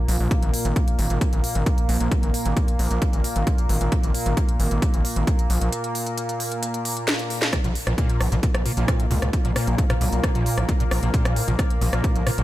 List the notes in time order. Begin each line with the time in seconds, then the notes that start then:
Already playing: A#2 A#3
0.08 A#1, open hi-hat
0.20 A#1
0.31 kick, closed hi-hat
0.43 G#1, closed hi-hat
0.54 open hi-hat
0.65 G#1, closed hi-hat
0.76 kick, closed hi-hat
0.88 closed hi-hat
0.99 G#1, open hi-hat
1.10 G#1, closed hi-hat
1.21 kick, closed hi-hat
1.33 G#1, closed hi-hat
1.44 open hi-hat
1.55 G#1, closed hi-hat
1.66 kick, closed hi-hat
1.78 closed hi-hat
1.89 A#1, open hi-hat
2.00 A#1, closed hi-hat
2.12 kick, closed hi-hat
2.23 G#1, closed hi-hat
2.34 open hi-hat
2.46 G#1, closed hi-hat
2.57 kick, closed hi-hat
2.68 closed hi-hat
2.79 A#1, open hi-hat
2.91 A#1, closed hi-hat
3.02 kick, closed hi-hat
3.13 G#1, closed hi-hat
3.24 open hi-hat
3.36 G#1, closed hi-hat
3.47 kick, closed hi-hat
3.58 closed hi-hat
3.69 G#1, open hi-hat
3.81 G#1, closed hi-hat
3.92 kick, closed hi-hat
4.03 G#1, closed hi-hat
4.15 open hi-hat
4.26 G#1, closed hi-hat
4.37 kick, closed hi-hat
4.49 closed hi-hat
4.60 G#1, open hi-hat
4.71 G#1, closed hi-hat
4.82 kick, closed hi-hat
4.94 G#1, closed hi-hat
5.05 open hi-hat
5.16 G#1, closed hi-hat
5.27 kick, closed hi-hat
5.39 closed hi-hat
5.50 A#1, open hi-hat
5.61 A#1, closed hi-hat
5.72 closed hi-hat
5.84 closed hi-hat
5.95 open hi-hat
6.06 closed hi-hat
6.18 closed hi-hat
6.29 closed hi-hat
6.40 open hi-hat
6.52 closed hi-hat
6.63 closed hi-hat
6.74 closed hi-hat
6.85 open hi-hat
6.97 closed hi-hat
7.08 snare, closed hi-hat
7.19 closed hi-hat
7.30 open hi-hat
7.42 snare, closed hi-hat
7.53 A#2 A#3, kick, cross-stick, closed hi-hat
7.64 A#1 A#2, closed hi-hat
7.75 open hi-hat
7.87 A#1 A#2, cross-stick, closed hi-hat
7.98 A#2, kick, closed hi-hat
8.09 closed hi-hat
8.21 A#1 G#2, cross-stick, open hi-hat
8.32 A#1 A#2, closed hi-hat
8.43 A#2, kick, closed hi-hat
8.55 A#1, cross-stick, closed hi-hat
8.66 A#2, open hi-hat
8.77 A#1 A#2, closed hi-hat
8.88 kick, cross-stick, closed hi-hat
9.00 G#2, closed hi-hat
9.11 C#2 A#2, open hi-hat
9.22 C#2 A#2, cross-stick, closed hi-hat
9.33 kick, closed hi-hat
9.45 A#1 A#2, closed hi-hat
9.56 A#2, cross-stick, open hi-hat
9.67 A#1, closed hi-hat
9.78 G#2, kick, closed hi-hat
9.90 A#2, cross-stick, closed hi-hat
10.01 B1 A#2, open hi-hat
10.12 B1, closed hi-hat
10.24 A#2, kick, cross-stick, closed hi-hat
10.35 A#1 A#2, closed hi-hat
10.46 open hi-hat
10.58 A#1 G#2, cross-stick, closed hi-hat
10.69 A#2, kick, closed hi-hat
10.80 A#2, closed hi-hat
10.91 A#1, cross-stick, open hi-hat
11.03 A#1 A#2, closed hi-hat
11.14 A#2, kick, closed hi-hat
11.25 A#1, cross-stick, closed hi-hat
11.36 G#2, open hi-hat
11.48 A#1 A#2, closed hi-hat
11.59 A#2, kick, cross-stick, closed hi-hat
11.70 closed hi-hat
11.81 A#1 A#2, open hi-hat
11.93 A#1 A#2, cross-stick, closed hi-hat
12.04 kick, closed hi-hat
12.16 A#1 G#2, closed hi-hat
12.27 A#2, cross-stick, open hi-hat
12.38 A#1 A#2, closed hi-hat